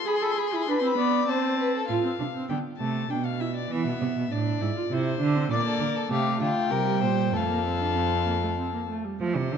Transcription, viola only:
0.06 G#4
0.22 A4
0.37 G#4
0.53 E4
0.68 D4
0.82 C4
0.97 B3
1.27 C4
1.89 F4
2.05 C4
2.19 D4
2.35 C4
2.50 B3
2.80 A3
3.09 D4
3.40 E4
3.70 B3
4.31 D4
4.61 E4
4.76 F4
4.92 E4
5.22 D4
5.36 C4
5.51 A#3
6.10 A3
6.72 G3
7.34 A3
7.49 A#3
7.65 C4
7.81 D4
7.96 C4
8.27 A#3
8.43 A3
8.58 C4
8.74 A#3
8.89 A3
9.05 G3
9.21 A3
9.51 F3

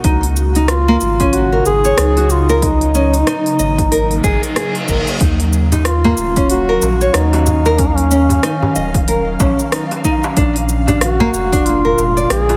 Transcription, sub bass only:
0.04 C#2
1.02 G#1
1.66 G#1
1.98 C#2
3.59 G#1
4.24 G#1
4.88 G#1
5.21 D#2
6.18 D#1
6.82 A#1
7.14 D#2
8.76 D#1
9.40 A#1
10.37 A#1
11.34 F1
11.98 F1
12.30 A#1

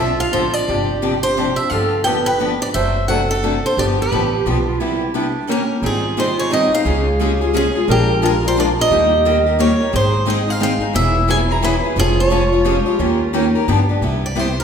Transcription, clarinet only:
Already playing: F4
0.68 G4
1.72 A4
2.06 B4
2.74 C5
3.10 A4
3.78 G4
4.47 F4
4.67 F4
4.80 E4
5.14 D4
5.50 C#4
5.78 E4
5.85 F4
6.51 D#4
6.86 G#4
7.22 G4
7.42 G#4
7.89 A#4
8.22 F4
8.91 G4
9.26 A#4
9.93 G#4
10.96 E4
11.98 F4
12.65 G4
13.00 F4
13.34 D#4
13.68 D4

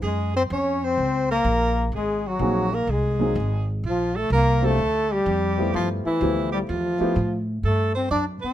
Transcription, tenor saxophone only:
0.03 G#4
0.36 C5
0.53 C#5
0.84 C5
1.31 A#4
1.95 G#4
2.27 F#4
2.75 A#4
2.90 G#4
3.85 F4
4.16 A4
4.32 A#4
4.65 A4
5.12 G4
5.76 F4
6.06 E4
6.52 G4
6.68 F4
7.65 A4
7.95 C5
8.11 D5
8.41 C5

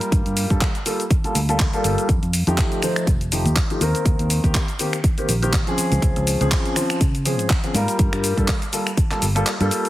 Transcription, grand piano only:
Already playing: G3 A#3 F4 A#4
0.50 G3 A#3 F4 A4
0.85 G3 A#3 F4 A4
1.24 G3 A#3 F4 A4
1.49 G3 A#3 F4 A4
1.73 G3 A#3 F4 A4
2.47 F3 A3 D#4 G4
2.83 F3 A3 D#4 C5
3.32 F3 A3 D#4 G4
3.70 F3 A3 D#4 G4
3.81 D#3 A#3 C4 A#4
4.44 D#3 A#3 C4 G4
4.79 D#3 A#3 C4 G4
5.18 D#3 A#3 C4 G4
5.42 D#3 A#3 C4 G4
5.67 F3 C4 C#4 G#4
6.41 F3 C4 C#4 G#4
6.76 F3 C4 C#4 C5
7.25 F3 C4 C#4 G#4
7.63 F3 C4 C#4 G#4
7.74 G3 A#3 F4 A#4
8.37 G3 A#3 F4 A4
8.72 G3 A#3 F4 A4
9.10 G3 A#3 F4 A4
9.35 G3 A#3 F4 A4
9.60 G3 A#3 F4 A4

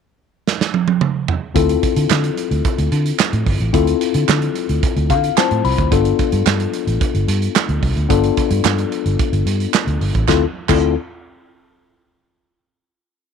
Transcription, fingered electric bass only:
1.56 D2
1.97 D3
2.10 D3
2.51 D2
2.78 D2
2.92 D3
3.33 A2
3.46 G1
3.60 A1
3.74 D2
4.15 D3
4.28 D3
4.69 D2
4.96 D2
5.10 D3
5.51 A2
5.64 C2
5.78 D2
5.92 G1
6.33 G2
6.46 G2
6.87 A1
7.14 G1
7.28 G2
7.69 D2
7.83 C2
7.96 D2
8.10 G1
8.51 G2
8.64 G2
9.06 G1
9.32 G1
9.46 G2
9.87 D2
10.01 G1
10.15 A1
10.28 D2
10.69 D2

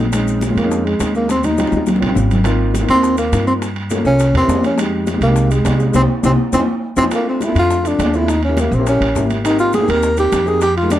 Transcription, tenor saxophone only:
0.57 A#3
0.86 G#3
1.16 A#3
1.31 C4
1.45 D#4
2.90 C4
3.18 A#3
3.47 C4
4.06 C#4
4.37 C4
4.66 C#4
5.22 A#3
5.51 G#3
5.95 C4
6.25 C4
6.54 C4
6.97 C4
7.14 A#3
7.29 C4
7.43 E4
7.59 F4
7.87 D4
8.16 E4
8.29 D#4
8.44 C#4
8.60 A#3
8.74 C4
8.88 C#4
9.46 D#4
9.60 F4
9.74 G#4
9.90 A#4
10.19 G4
10.48 G#4
10.62 G4
10.77 F4
10.92 D4

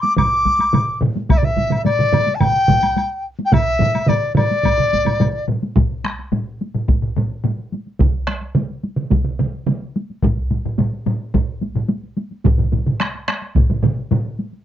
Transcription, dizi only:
0.01 D6
0.17 D6
1.30 E5
1.37 D5
1.44 E5
1.85 D5
2.35 A5
2.39 G5
3.45 G5
3.53 E5
4.08 D5
4.35 D5

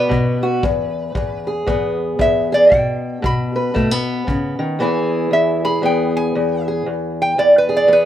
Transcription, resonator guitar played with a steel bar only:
Already playing: B4
2.21 E5
2.54 D5
2.74 G5
3.26 B5
5.33 E5
5.65 B5
5.85 G5
6.17 G#5
7.22 G5
7.39 D5
7.58 B4
7.77 D5
7.93 B4

